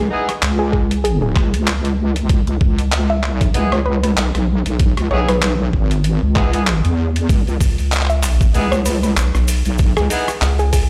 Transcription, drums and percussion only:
0.29 cross-stick, closed hi-hat
0.42 clap, closed hi-hat
0.73 kick
0.91 closed hi-hat
1.05 closed hi-hat
1.36 kick, cross-stick, clap
1.54 closed hi-hat
1.67 clap, closed hi-hat
1.85 closed hi-hat
2.16 closed hi-hat
2.29 kick, closed hi-hat
2.47 closed hi-hat
2.61 kick
2.79 closed hi-hat
2.92 clap, closed hi-hat
3.23 clap
3.41 kick, closed hi-hat
3.54 closed hi-hat
3.72 cross-stick
4.04 closed hi-hat
4.17 clap, closed hi-hat
4.35 cross-stick, closed hi-hat
4.66 closed hi-hat
4.79 kick, closed hi-hat
4.97 cross-stick, closed hi-hat
5.29 cross-stick, closed hi-hat
5.42 clap, closed hi-hat
5.73 kick
5.91 closed hi-hat
6.04 closed hi-hat
6.36 kick, cross-stick, clap
6.53 closed hi-hat
6.67 clap, closed hi-hat
6.85 closed hi-hat
7.16 closed hi-hat
7.29 kick, open hi-hat, cabasa
7.47 open hi-hat, cabasa
7.60 kick, open hi-hat, cabasa
7.78 open hi-hat, cabasa
7.92 clap, open hi-hat, cabasa
7.96 clap
8.01 clap
8.05 clap
8.10 open hi-hat, cabasa
8.23 clap, open hi-hat, cabasa
8.41 kick, open hi-hat, cabasa
8.54 open hi-hat, cabasa
8.72 cross-stick, open hi-hat, cabasa
8.85 open hi-hat, cabasa
9.03 open hi-hat, cabasa
9.17 clap, cabasa
9.35 cross-stick, open hi-hat, cabasa
9.48 open hi-hat, cabasa
9.65 open hi-hat, cabasa
9.78 kick, open hi-hat, cabasa
9.97 cross-stick, open hi-hat, cabasa
10.10 open hi-hat, cabasa
10.28 cross-stick, open hi-hat, cabasa
10.42 clap, open hi-hat, cabasa
10.59 open hi-hat, cabasa
10.73 kick, open hi-hat, cabasa

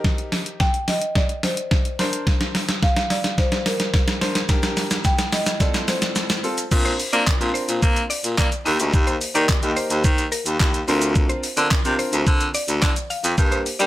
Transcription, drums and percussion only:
0.04 kick, snare
0.18 closed hi-hat
0.32 snare, open hi-hat
0.46 closed hi-hat
0.60 kick, snare
0.74 closed hi-hat
0.88 snare, open hi-hat
1.02 closed hi-hat
1.15 kick, snare
1.29 closed hi-hat
1.43 snare, open hi-hat
1.57 closed hi-hat
1.71 kick, snare
1.85 closed hi-hat
1.99 snare, open hi-hat
2.13 closed hi-hat
2.27 kick, snare
2.41 snare, closed hi-hat
2.55 snare, open hi-hat
2.69 snare, closed hi-hat
2.83 kick, snare
2.96 snare, closed hi-hat
3.10 snare, open hi-hat
3.24 snare, closed hi-hat
3.38 kick, snare
3.52 snare, closed hi-hat
3.66 snare, open hi-hat
3.80 snare, closed hi-hat
3.94 kick, snare
4.08 snare, closed hi-hat
4.21 snare, open hi-hat
4.35 snare, closed hi-hat
4.49 kick, snare, shaker
4.63 snare, closed hi-hat, shaker
4.77 snare, open hi-hat, shaker
4.91 snare, closed hi-hat, shaker
5.05 kick, snare, shaker
5.19 snare, closed hi-hat, shaker
5.33 snare, open hi-hat, shaker
5.46 snare, closed hi-hat, shaker
5.60 kick, snare, shaker
5.74 snare, closed hi-hat, shaker
5.88 snare, open hi-hat, shaker
6.02 snare, closed hi-hat, shaker
6.16 snare, shaker
6.30 snare, closed hi-hat, shaker
6.44 open hi-hat, shaker
6.58 closed hi-hat, shaker
6.72 kick, crash, shaker
6.86 closed hi-hat, shaker
7.00 open hi-hat, shaker
7.13 closed hi-hat, shaker
7.27 kick, snare, clap, shaker
7.41 closed hi-hat, shaker
7.55 open hi-hat, shaker
7.69 closed hi-hat, shaker
7.83 kick, shaker
7.96 closed hi-hat, shaker
8.11 open hi-hat, shaker
8.24 closed hi-hat, shaker
8.38 kick, snare, clap, shaker
8.52 closed hi-hat, shaker
8.66 open hi-hat, shaker
8.80 closed hi-hat, shaker
8.94 kick, shaker
9.07 closed hi-hat, shaker
9.21 open hi-hat, shaker
9.35 closed hi-hat, shaker
9.49 kick, snare, clap, shaker
9.63 closed hi-hat, shaker
9.77 open hi-hat, shaker
9.90 closed hi-hat, shaker
10.04 kick, shaker
10.18 closed hi-hat, shaker
10.32 open hi-hat, shaker
10.46 closed hi-hat, shaker
10.60 kick, snare, clap, shaker
10.74 closed hi-hat, shaker
10.88 open hi-hat, shaker
11.02 closed hi-hat, shaker
11.16 kick, shaker
11.30 closed hi-hat, shaker
11.44 open hi-hat, shaker
11.57 closed hi-hat, shaker
11.71 kick, snare, clap, shaker
11.85 closed hi-hat, shaker
11.99 open hi-hat, shaker
12.13 closed hi-hat, shaker
12.27 kick, shaker
12.41 closed hi-hat, shaker
12.55 open hi-hat, shaker
12.68 closed hi-hat, shaker
12.82 kick, snare, clap, shaker
12.96 closed hi-hat, shaker
13.11 open hi-hat, shaker
13.24 closed hi-hat, shaker
13.38 kick, shaker
13.52 closed hi-hat, shaker
13.66 open hi-hat, shaker
13.80 closed hi-hat, shaker

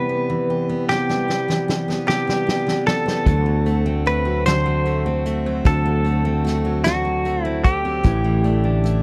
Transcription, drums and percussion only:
0.89 snare
1.09 snare
1.30 snare
1.49 snare
1.69 snare
1.89 snare
2.09 snare
2.29 snare
2.49 snare
2.68 snare
2.88 snare
3.08 snare
3.26 kick, closed hi-hat
3.66 closed hi-hat
4.07 closed hi-hat
4.46 snare, closed hi-hat
4.86 closed hi-hat
5.26 closed hi-hat
5.65 kick, closed hi-hat
6.06 closed hi-hat
6.46 snare, closed hi-hat
6.84 snare, closed hi-hat
7.26 closed hi-hat
7.65 kick, closed hi-hat
8.05 kick, closed hi-hat
8.45 closed hi-hat
8.85 closed hi-hat

